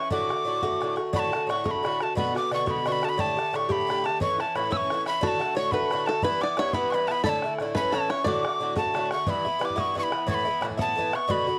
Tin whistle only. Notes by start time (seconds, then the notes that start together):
Already playing: C#6
0.12 D6
1.16 A5 B5
1.50 C#6
1.66 C#6
1.71 B5
2.03 A5
2.17 B5
2.37 D6
2.54 C#6
2.71 B5
2.88 C#6
2.92 B5
3.05 A5
3.09 B5
3.20 A5
3.56 C#6
3.72 B5
4.06 A5
4.22 C#6
4.40 A5
4.56 B5
4.72 E6
4.77 C#6
5.07 B5
5.23 B5
5.28 A5
5.58 C#6
5.71 B5
6.06 A5
6.23 B5
6.41 D6
6.59 C#6
6.74 B5
6.91 B5 C#6
7.08 A5 B5
7.25 B5
7.29 A5
7.77 B5
7.95 A5
8.10 C#6
8.26 D6
8.77 A5
9.12 C#6
9.30 B5
9.65 D6
9.80 C#6
9.99 C#6
10.03 B5
10.31 B5 C#6
10.81 A5
11.15 C#6
11.31 B5